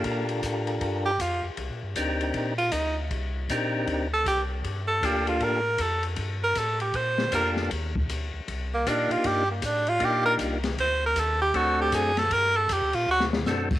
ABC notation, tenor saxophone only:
X:1
M:4/4
L:1/8
Q:"Swing" 1/4=157
K:Gm
V:1 name="Tenor saxophone"
z4 z G F z | z4 z F E z | z4 z A G z | z A G F B2 A z |
z B A G c2 B z | z4 z B, D F | G B, D F G B z2 | c B A G ^F G _A =A |
B A G F ^F z3 |]